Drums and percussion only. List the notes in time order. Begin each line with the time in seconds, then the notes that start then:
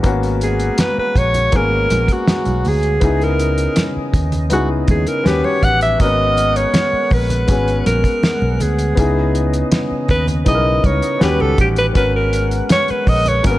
0.04 kick, closed hi-hat
0.23 closed hi-hat
0.41 closed hi-hat
0.60 closed hi-hat
0.78 snare, closed hi-hat, muted conga, high conga
1.16 kick, closed hi-hat, low conga
1.34 closed hi-hat, low conga
1.52 kick, closed hi-hat, muted conga, high conga
1.90 closed hi-hat, high conga
2.08 kick, closed hi-hat
2.28 snare, closed hi-hat, high conga
2.45 closed hi-hat, high conga
2.65 open hi-hat, muted conga, low conga
2.83 closed hi-hat
3.01 kick, closed hi-hat, muted conga
3.21 closed hi-hat
3.39 closed hi-hat
3.58 closed hi-hat
3.76 snare, closed hi-hat, muted conga, high conga
4.14 kick, closed hi-hat, muted conga, low conga
4.32 closed hi-hat, low conga
4.50 closed hi-hat, muted conga, high conga
4.88 kick, closed hi-hat, muted conga, high conga
5.07 closed hi-hat
5.26 snare, closed hi-hat, muted conga, high conga
5.44 high conga
5.63 kick, closed hi-hat, muted conga
5.81 closed hi-hat
6.00 kick, closed hi-hat, muted conga
6.37 closed hi-hat, muted conga
6.56 closed hi-hat
6.74 snare, closed hi-hat, muted conga, high conga
7.11 kick, open hi-hat, muted conga, low conga
7.29 closed hi-hat, low conga
7.48 kick, closed hi-hat, high conga
7.68 closed hi-hat
7.86 closed hi-hat, high conga
8.04 kick, closed hi-hat
8.23 snare, closed hi-hat, high conga
8.42 high conga
8.60 closed hi-hat, low conga
8.79 closed hi-hat
8.97 kick, closed hi-hat, muted conga
9.35 closed hi-hat
9.54 closed hi-hat
9.72 snare, closed hi-hat, high conga
10.08 kick, closed hi-hat, muted conga, low conga
10.27 closed hi-hat, low conga
10.46 kick, closed hi-hat, muted conga, high conga
10.84 kick, closed hi-hat, high conga
11.02 closed hi-hat
11.21 snare, closed hi-hat, muted conga, high conga
11.40 high conga
11.58 kick, closed hi-hat, muted conga, low conga
11.76 closed hi-hat
11.95 kick, closed hi-hat
12.33 closed hi-hat
12.51 closed hi-hat
12.69 snare, closed hi-hat, muted conga, high conga
12.88 closed hi-hat
13.07 kick, open hi-hat, low conga
13.26 closed hi-hat, low conga
13.44 kick, closed hi-hat, muted conga, high conga